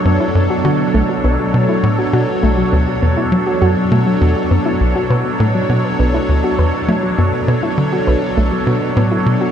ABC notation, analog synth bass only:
X:1
M:4/4
L:1/16
Q:1/4=101
K:Bm
V:1 name="Analog synth bass" clef=bass
F,, z F,, z D,2 B,,,2 B,,, z B,, z A,,2 B,, z | B,,,2 D,, z E,, z F,2 F,, z B,, z E,, z F,,2 | B,,, z B,, z A,,2 B,, z B,,,2 D,, z E,, z F,2 | F,, z B,, z D,2 B,,,2 B,,, z B,, z A,,2 B,, z |]